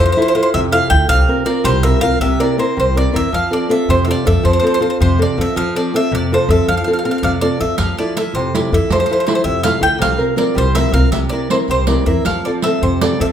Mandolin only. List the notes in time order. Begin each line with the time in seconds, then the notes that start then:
0.06 C5
0.12 C5
0.22 C5
0.28 C5
0.35 C5
0.43 C5
0.54 E5
0.72 F5
0.90 G5
1.09 F5
1.46 D5
1.65 C5
1.83 E5
2.01 F5
2.21 E5
2.40 D5
2.59 C5
2.80 C5
2.97 D5
3.16 E5
3.34 F5
3.53 D5
3.71 E5
3.90 C5
4.05 E5
4.11 D5
4.27 E5
4.45 C5
4.53 C5
4.60 C5
4.67 C5
4.74 C5
4.82 C5
4.90 C5
5.02 C5
5.22 D5
5.41 E5
5.57 F5
5.76 D5
5.96 E5
6.15 D5
6.34 C5
6.51 E5
6.68 F5
6.77 F5
6.84 F5
6.93 F5
6.99 F5
7.05 F5
7.11 F5
7.18 F5
7.23 D5 F5
7.41 D5
7.61 E5
7.78 F5
7.98 D5
8.17 E5
8.35 C5
8.55 D5
8.74 E5
8.92 C5
9.00 C5
9.06 C5
9.13 C5
9.20 C5
9.27 C5
9.35 C5
9.44 E5
9.63 F5
9.83 G5
10.02 F5
10.38 D5
10.58 C5
10.75 E5
10.94 F5
11.12 E5
11.29 D5
11.51 C5
11.71 C5
11.87 D5
12.06 E5
12.26 F5
12.45 D5
12.63 E5
12.83 C5
13.01 D5
13.21 E5